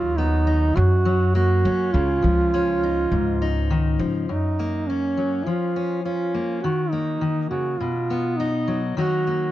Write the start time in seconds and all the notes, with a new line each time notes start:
Already playing: D#2 D#3 F#3 F4
0.17 B3 D#4
0.47 D#4
0.76 F#2 F#4
1.05 F#3
1.35 A#3 F#4
1.65 F#3 C#4
1.92 C#2 C#3 F4
2.22 C#2 F3
2.54 C#4
2.83 D#4
3.12 C#2 G#2
3.42 D#4
3.70 D#3
3.99 C#3 F3
4.27 F#2 D#4
4.59 A#3
4.87 C#4
5.17 F#3
5.45 F3 F4
5.76 C#4
6.03 C#4 F4
6.34 A#3
6.61 D#3 F#4
6.90 A#3 D#4
7.21 D#3
7.50 C#3 F#4
7.79 B2 F4
8.10 B3
8.37 D#4
8.68 F#3
8.97 D#3 F#3 A#3 D#4 F#4
9.27 A#3